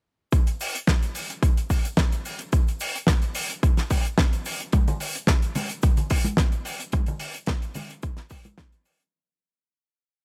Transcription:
0.32 kick, closed hi-hat, shaker
0.47 closed hi-hat, shaker
0.61 open hi-hat, shaker
0.75 closed hi-hat, shaker
0.87 kick, snare, closed hi-hat, shaker
1.02 closed hi-hat, shaker
1.15 open hi-hat, shaker
1.30 closed hi-hat, shaker
1.43 kick, closed hi-hat, shaker
1.57 closed hi-hat, shaker
1.70 kick, open hi-hat, shaker
1.85 closed hi-hat, shaker
1.97 kick, snare, closed hi-hat, shaker
2.12 closed hi-hat, shaker
2.25 open hi-hat, shaker
2.39 closed hi-hat, shaker
2.52 kick, closed hi-hat, shaker
2.68 closed hi-hat, shaker
2.80 open hi-hat, shaker
2.95 closed hi-hat, shaker
3.07 kick, snare, closed hi-hat, shaker
3.22 closed hi-hat, shaker
3.35 open hi-hat, shaker
3.49 closed hi-hat, shaker
3.63 kick, closed hi-hat, shaker
3.77 snare, closed hi-hat, shaker
3.90 kick, open hi-hat, shaker
4.05 closed hi-hat, shaker
4.18 kick, snare, closed hi-hat, shaker
4.33 closed hi-hat, shaker
4.45 open hi-hat, shaker
4.60 closed hi-hat, shaker
4.72 kick, closed hi-hat, high conga, shaker
4.88 closed hi-hat, low conga, shaker
5.00 open hi-hat, shaker
5.15 closed hi-hat, shaker
5.27 kick, snare, closed hi-hat, shaker
5.42 closed hi-hat, shaker
5.55 open hi-hat, high conga, low conga, shaker
5.69 closed hi-hat, shaker
5.82 kick, closed hi-hat, shaker
5.97 closed hi-hat, low conga, shaker
6.10 kick, open hi-hat, shaker
6.25 closed hi-hat, high conga, shaker
6.37 kick, snare, closed hi-hat, shaker
6.52 closed hi-hat, shaker
6.65 open hi-hat, shaker
6.80 closed hi-hat, shaker
6.92 kick, closed hi-hat, high conga, shaker
7.06 closed hi-hat, low conga, shaker
7.20 open hi-hat, shaker
7.34 closed hi-hat, shaker
7.46 kick, snare, closed hi-hat, shaker
7.62 closed hi-hat, shaker
7.74 open hi-hat, high conga, low conga, shaker
7.89 closed hi-hat, shaker
8.02 kick, closed hi-hat, shaker
8.17 snare, closed hi-hat, shaker
8.30 kick, open hi-hat, shaker
8.44 closed hi-hat, high conga, shaker
8.58 kick, snare, closed hi-hat, shaker
8.72 closed hi-hat, shaker
8.85 open hi-hat, shaker
9.00 closed hi-hat, shaker

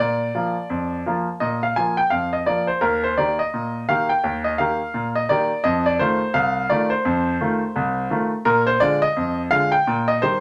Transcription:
0.00 A#2 D5
0.35 F3 A#3 F4
0.70 F2
1.06 F3 A#3 F4
1.40 A#2 D#5
1.63 F5
1.76 F3 A#3 F4 G#5
1.97 G5
2.10 F2 F5
2.33 D#5
2.46 F3 A#3 F4 D5
2.67 C5
2.81 D#2 A#4
3.04 C5
3.17 D#3 A#3 G4 D5
3.39 D#5
3.54 A#2
3.89 D#3 A#3 G4 F5
4.09 G5
4.24 D#2
4.44 D#5
4.58 D#3 A#3 G4 F5
4.94 A#2
5.16 D#5
5.29 D#3 A#3 G4 D5
5.64 F2 D#5
5.86 D5
5.99 D#3 A3 F4 C5
6.34 C2 F5
6.70 D#3 A3 F4 D5
6.90 C5
7.05 F2
7.41 D#3 A3 F4
7.76 C2
8.10 D#3 A3 F4
8.45 A#2 A#4
8.67 C5
8.80 D3 G#3 F4 D5
9.02 D#5
9.17 F2
9.51 D3 G#3 F4 F5
9.72 G5
9.87 A#2
10.08 D#5
10.22 D#3 G3 G4 C5

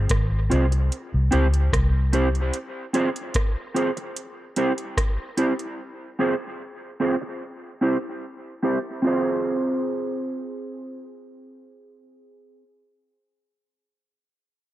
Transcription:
0.09 G#1, kick, cross-stick, closed hi-hat
0.50 C2 C4 F4 G#4 C5, closed hi-hat
0.71 muted clean electric guitar stroke, closed hi-hat
0.92 closed hi-hat
1.14 C2
1.31 C#2 C4 E4 G4 C5, closed hi-hat
1.54 closed hi-hat
1.73 C2, kick, cross-stick, closed hi-hat
2.13 C4 E4 G4 C5, closed hi-hat
2.35 closed hi-hat
2.54 closed hi-hat
2.93 C4 F4 G#4 C5, closed hi-hat
3.16 closed hi-hat
3.34 kick, cross-stick, closed hi-hat
3.74 C4 F4 G#4 C5, closed hi-hat
3.97 muted clean electric guitar stroke, closed hi-hat
4.16 closed hi-hat
4.56 C4 E4 G4 C5, closed hi-hat
4.78 closed hi-hat
4.97 kick, cross-stick, closed hi-hat
5.37 C4 E4 G4 C5, closed hi-hat
5.59 closed hi-hat
6.19 C4 F4 G#4 C5
7.00 C4 F4 G#4 C5
7.22 muted clean electric guitar stroke
7.81 C4 E4 G4 C5
8.63 C4 E4 G4 C5
9.02 C4 F4 G#4
9.07 C5

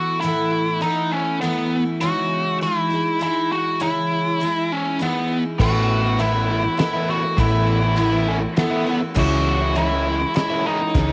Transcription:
Already playing: E3 A3 B3 E4 F#4
0.21 A2 E3 A3 B3 E4
0.81 E3 A3 B3 D#4 E4
1.12 C#4
1.41 E3 A3 B3 E4
2.01 C#3 E3 G#3 D#4 E4 F#4
2.61 E3 G#3 D#4 E4
2.90 G#3 D#4 E4
3.19 E3 G#3 D#4 E4
3.52 F#4
3.80 C#3 E3 G#3 E4
4.40 E3 G#3 D#4 E4
4.72 C#4
4.99 E3 G#3 B3 D#4 E4
5.59 A1 A2 E3 A3 B3 E4 F#4 A4 B4 E5, kick, crash
6.04 A3 B3 E4
6.19 A2 E3 A3 B3 E4 A4 B4 E5, ride
6.33 A3 B3 E4
6.47 E3 A3 B3 E4
6.64 muted overdriven electric guitar stroke
6.77 E3 A3 B3 E4 A4 B4 D#5, snare, ride
6.93 A3 B3 E4
7.08 E3 A3 B3 E4 F#4
7.23 muted overdriven electric guitar stroke
7.37 A1 A2 E3 A3 B3 E4, kick, ride
7.81 A3 B3 E4
7.96 A2 E3 A3 B3 E4 A4 B4 E5, ride
8.11 A3 B3 E4
8.26 E3 A3 B3 C#4 E4
8.41 muted overdriven electric guitar stroke
8.56 E3 A3 B3 E4 A4 B4 E5, snare, ride
8.70 A3 B3 E4
8.85 E3 A3 B3 E4
8.89 A3
9.01 muted overdriven electric guitar stroke
9.14 C#2 C#3 E3 G#3 C#4 E4 G#4 C#5 D#5, kick, crash
9.19 F#4
9.49 F#4
9.60 G#3 C#4 E4
9.75 C#3 E3 G#3 C#4 E4 G#4 C#5 D#5, ride
9.90 G#3 C#4 E4
10.06 E3 G#3 C#4 E4
10.22 muted overdriven electric guitar stroke
10.34 E3 G#3 C#4 E4 G#4 C#5 D#5, snare, ride
10.50 G#3 C#4 E4
10.65 E3 G#3 C#4 D#4 E4
10.81 muted overdriven electric guitar stroke
10.94 C#2 C#3 E3 G#3 C#4 E4, kick, snare

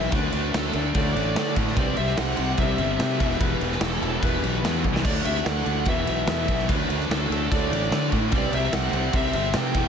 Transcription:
Already playing: B1 E2 B2 E3 E5
0.01 snare
0.12 D2 F#2 D3 A3 D4 B4, kick, ride
0.33 D2 D3 A3 D4, ride
0.53 D2 F#2 D3 A3 D4 A4, snare, ride
0.73 D2 F#2 D3 A3 D4 A4, ride
0.95 D2 A2 D3 A3 D4 D5, kick, ride
1.15 A1 D3 A3 D4, ride
1.35 D3 A3 D4, snare, ride
1.56 A2 D3 A3 D4, kick, ride
1.68 snare
1.77 C2 G2 C3 G3 C4 D5, kick, ride
1.97 C2 C3 G3 C4 E5, ride
2.07 snare
2.17 C2 C3 G3 C4 F#5, snare, ride
2.37 C2 C3 G3 C4, ride
2.57 C2 C3 G3 C4 E5, kick, ride
2.62 C3
2.78 G1 C3 G3 C4, ride
2.99 C3 G3 C4, snare, ride
3.18 E1 E2 B2 E3, kick, ride
3.31 snare
3.39 E1 E2 G2 B2 E3 B4, kick, ride
3.60 E1 E2 B2 E3, ride
3.72 snare
3.81 E1 E2 B2 E3 A4, snare, ride
3.85 E2
4.01 E1 E2 F#2 B2 E3 A4, ride
4.21 E1 E2 B2 E3 B4, kick, ride
4.25 G2
4.43 B1 E2 B2 E3, ride
4.62 E2 B2 E3, snare, ride
4.82 C2 E2 B2 E3, kick
4.96 snare
5.04 D2 A2 D3 A3 D4 D5, kick, crash, ride
5.24 D2 C3 D3 A3 D4 E5, ride
5.36 snare
5.44 D2 D3 A3 D4 F#5, snare, ride
5.66 D2 D3 A3 D4, ride
5.85 E1 E2 B2 E3 E5, kick, ride
6.05 B1 E2 B2 E3, ride
6.27 E2 B2 E3, snare, ride
6.48 B1 E2 B2 E3, kick, ride
6.59 snare
6.69 D2 D3 A3 D4 B4, kick, ride
6.74 F#2
6.89 D2 D3 A3 D4, ride
7.00 snare
7.09 D2 D3 A3 D4 A4, snare, ride
7.16 F#2
7.30 D2 F#2 D3 A3 D4 A4, ride
7.51 D2 A2 D3 A3 D4 D5, kick, ride
7.71 A1 D3 A3 D4, ride
7.91 D3 A3 D4, snare, ride
8.12 A2 D3 A3 D4, kick, ride
8.32 C2 C3 G3 C4, kick, ride
8.36 G2 D5
8.52 C2 C3 G3 C4 E5, ride
8.59 C3
8.64 snare
8.72 C2 C3 G3 C4 F#5, snare, ride
8.92 C2 C3 G3 C4, ride
9.13 C2 C3 G3 C4 E5, kick, ride
9.33 G1 C3 G3 C4, ride
9.53 C3 G3 C4 G5, snare, ride
9.60 E3
9.74 E1 E2 B2 E3, kick, ride

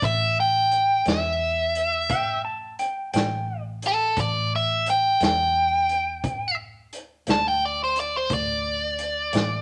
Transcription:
0.02 A1 E5, kick, closed hi-hat
0.40 G5
0.71 closed hi-hat
1.06 E2 E5, snare, closed hi-hat
1.75 closed hi-hat
2.09 A1 G5, kick, closed hi-hat
2.45 A5
2.79 G5, closed hi-hat
3.13 A1 G5, snare, closed hi-hat
3.82 closed hi-hat
3.87 A4
4.17 A1 D5, kick, closed hi-hat
4.56 E5
4.86 G5, closed hi-hat
5.20 E2 G5, snare, closed hi-hat
5.89 closed hi-hat
6.24 D2, kick, closed hi-hat
6.93 closed hi-hat
7.27 D2 A5, snare, closed hi-hat
7.48 G5
7.66 D5
7.84 C5
7.96 closed hi-hat
8.00 D5
8.17 C5
8.30 D2, kick, closed hi-hat
8.34 D5
8.99 closed hi-hat
9.33 A1, snare, closed hi-hat

